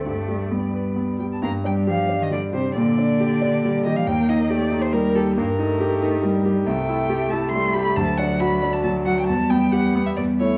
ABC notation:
X:1
M:3/4
L:1/16
Q:1/4=137
K:G
V:1 name="Violin"
d8- d2 g a | [K:Gm] b2 g2 f3 e d2 c2 | d8- d2 e f | g2 e2 d3 c B2 A2 |
B8- B2 z2 | [K:Em] g6 a2 c'2 b2 | a2 f2 b3 a a2 f g | a2 g2 f3 e d2 ^c2 |]
V:2 name="Grand piano"
G,,2 G,2 B,2 B2 B,2 G,2 | [K:Gm] G,,2 D2 G2 D2 G,2 G2 | B,,2 D2 G2 D2 G,2 G2 | E,,2 E2 G2 E2 G,2 G2 |
G,,2 E2 G2 E2 G,2 G2 | [K:Em] C,,2 E2 G2 E2 G,2 G2 | D,,2 D2 F2 D2 F,2 F2 | E,,2 B,2 G2 B,2 E,,2 [A,E]2 |]
V:3 name="Cello" clef=bass
A,4 G,6 z2 | [K:Gm] B,2 G,2 F,3 E, D,2 C,2 | D,8- D,2 E, F, | B,4 A,4 G,4 |
B,2 A,6 G,4 | [K:Em] A,8 A,4 | F,8 F,4 | G,8 G,4 |]